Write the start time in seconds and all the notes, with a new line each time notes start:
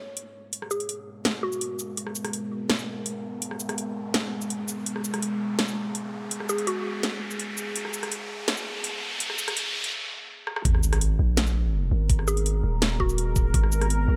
Already playing: G#3 B3 A#4, riser
0.17 closed hi-hat
0.53 closed hi-hat
0.62 cross-stick
0.71 G#4, shaker
0.80 closed hi-hat
0.89 closed hi-hat
1.25 snare, closed hi-hat
1.43 F#4
1.52 shaker
1.61 closed hi-hat
1.79 shaker
1.97 closed hi-hat
2.07 cross-stick
2.15 shaker
2.25 cross-stick, closed hi-hat
2.33 closed hi-hat
2.70 snare, closed hi-hat
2.79 shaker
3.06 closed hi-hat
3.42 closed hi-hat
3.51 cross-stick
3.60 shaker
3.69 cross-stick, closed hi-hat
3.78 closed hi-hat
4.14 snare, closed hi-hat
4.42 shaker
4.50 closed hi-hat
4.68 shaker
4.86 G#4, closed hi-hat
4.96 cross-stick
5.05 shaker
5.14 cross-stick, closed hi-hat
5.22 closed hi-hat
5.59 snare, closed hi-hat
5.68 shaker
5.95 closed hi-hat
6.31 closed hi-hat
6.40 cross-stick
6.49 G#4, shaker
6.58 closed hi-hat
6.67 F#4, closed hi-hat
7.03 snare, closed hi-hat
7.31 shaker
7.40 closed hi-hat
7.58 shaker
7.76 closed hi-hat
7.85 cross-stick
7.94 shaker
8.03 cross-stick, closed hi-hat
8.12 closed hi-hat
8.48 snare, closed hi-hat
8.57 shaker
8.84 closed hi-hat
9.20 closed hi-hat
9.30 cross-stick
9.39 shaker
9.48 cross-stick, closed hi-hat
9.57 closed hi-hat
9.84 closed hi-hat
10.47 cross-stick
10.56 cross-stick
10.65 G#1 G#3 B3 A#4, kick, closed hi-hat, sub drop
10.75 cross-stick
10.83 shaker
10.93 cross-stick, closed hi-hat
11.01 closed hi-hat
11.19 A#1
11.37 snare, closed hi-hat
11.47 shaker
11.91 G#1
12.10 kick, closed hi-hat
12.19 cross-stick
12.28 G#4, shaker
12.37 closed hi-hat
12.46 closed hi-hat
12.64 D#1
12.82 snare, closed hi-hat
13.00 F#4, kick
13.09 shaker
13.18 closed hi-hat
13.36 kick, shaker
13.54 G#1, kick, closed hi-hat
13.63 cross-stick
13.72 shaker
13.81 cross-stick, closed hi-hat
13.90 closed hi-hat
14.08 A#1